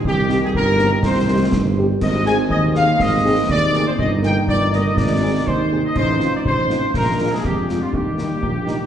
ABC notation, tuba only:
X:1
M:2/4
L:1/8
Q:1/4=122
K:Eb
V:1 name="Tuba" clef=bass
C,,2 G,,,2 | C,,2 G,,,2 | A,,,2 E,,2 | A,,,2 E,,2 |
G,,,2 G,,,2 | A,,,2 E,,2 | =A,,,2 A,,,2 | B,,,2 F,,2 |
E,,2 B,,,2 |]